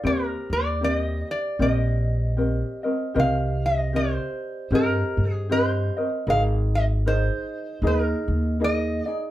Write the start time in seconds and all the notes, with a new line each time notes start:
0.03 D#2 C4 G4 A#4
0.50 D#2 D5
0.81 C4 G4 A#4 D5
0.96 D#5
1.31 D5
1.59 A#1 C4 G4 A#4 D#5
2.37 C4 G4 A#4 D#5
2.83 C4 A#4 D#5
3.14 C2 C4 G4 A#4 D#5
3.20 F5
3.66 D#5
3.93 C4 G4 A#4 C5 D#5
4.71 G2 C4 G4 A#4 D#5
4.75 A#4
5.17 G2
5.32 G#4
5.49 C4 G4 A#4 C5 D#5
5.97 C4 A#4 D#5
6.27 G#1 D#4 G#4 A#4 D#5 F5
6.75 D#5
7.06 D#4 G#4 A#4 C5 D#5
7.82 D#2 D#4 G#4 A#4 D#5
7.87 A#4
8.28 D#2
8.60 D#4 G#4 A#4 D#5
8.64 D#5
9.04 D#4 G#4 D5 D#5